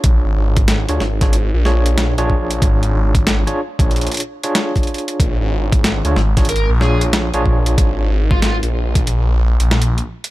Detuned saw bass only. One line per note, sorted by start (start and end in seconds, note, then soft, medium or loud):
0.04 0.21 A#1 loud
0.24 0.34 G#1 loud
0.36 0.86 G#1 medium
0.89 0.99 D2 loud
1.01 1.50 G#1 loud
1.54 2.15 A#1 loud
2.18 2.60 A#1 loud
2.62 2.92 G#1 medium
2.94 3.44 G#1 loud
3.79 4.08 A#1 loud
5.20 5.37 A#1 medium
5.41 5.50 G#1 loud
5.52 6.02 G#1 medium
6.05 6.15 D2 loud
6.16 6.66 G#1 loud
6.69 7.31 A#1 loud
7.34 7.76 A#1 loud
7.78 8.08 G#1 loud
8.10 8.60 G#1 loud
8.63 9.57 A#1 loud
9.60 10.02 A#1 loud